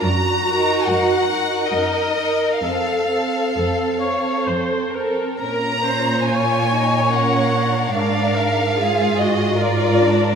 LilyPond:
<<
  \new Staff \with { instrumentName = "Violin section" } { \time 3/4 \key bes \minor \tempo 4 = 71 bes''4 ges''4 ees''4 | f''2 r4 | bes''4 aes''4 ges''4 | f''4. ees''8 d''4 | }
  \new Staff \with { instrumentName = "Viola section" } { \time 3/4 \key bes \minor ges'2 bes'4 | a'4 a'8 des''8 c''8 bes'8 | bes'8 c''8 des''2 | d''8 bes'8 aes'8 ges'8 f'4 | }
  \new Staff \with { instrumentName = "Violin section" } { \time 3/4 \key bes \minor << { r8 bes'4 bes'4 bes'8 | a'8 a'4 a'4 a'8 | bes'8 des''4. bes'4 | bes'4 aes'4 bes'4 | } \\ { r8 ees'4 ees'4 ees'8 | c'8 c'4 c'4 c'8 | des'4 f'8 ees'8 des'8 d'8~ | d'4 f'4 f'8 d'8 | } >> }
  \new Staff \with { instrumentName = "Cello section" } { \clef bass \time 3/4 \key bes \minor ges,4 ges,4 ges,4 | f,4 f,4 f,4 | bes,2. | aes,2. | }
>>